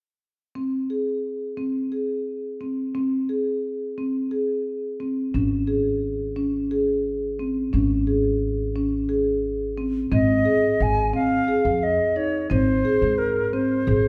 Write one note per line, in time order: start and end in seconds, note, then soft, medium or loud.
0.55 0.75 C4 medium
0.90 1.29 G#4 soft
1.57 1.77 C4 medium
1.92 2.31 G#4 soft
2.61 2.80 C4 medium
2.95 3.14 C4 medium
3.29 3.68 G#4 soft
3.98 4.17 C4 medium
4.31 4.70 G#4 soft
5.00 5.20 C4 medium
5.34 7.69 G#1 medium
5.34 5.54 C#4 medium
5.67 6.07 G#4 soft
6.36 6.56 C#4 medium
6.71 7.10 G#4 medium
7.39 7.59 C4 medium
7.73 10.09 G#1 medium
7.73 7.93 C#4 medium
8.07 8.46 G#4 soft
8.76 8.95 C#4 medium
9.09 9.48 G#4 soft
9.78 9.97 C4 medium
10.12 10.43 G#1 medium
10.12 10.31 C4 medium
10.12 10.84 D#5 medium
10.45 10.85 G#4 soft
10.80 11.12 G#1 medium
10.80 11.14 G#5 medium
11.14 11.33 C4 medium
11.14 11.85 F5 medium
11.48 11.87 G#4 medium
11.65 11.97 F2 medium
11.83 12.18 D#5 medium
12.16 12.36 D#4 medium
12.16 12.50 C#5 medium
12.50 12.82 G#1 medium
12.50 12.70 C4 medium
12.50 13.20 C5 medium
12.85 13.24 G#4 medium
13.02 13.83 G#2 medium
13.18 13.55 A#4 medium
13.53 13.73 C4 medium
13.53 14.08 C5 medium
13.87 14.08 G#1 medium
13.87 14.08 G#4 medium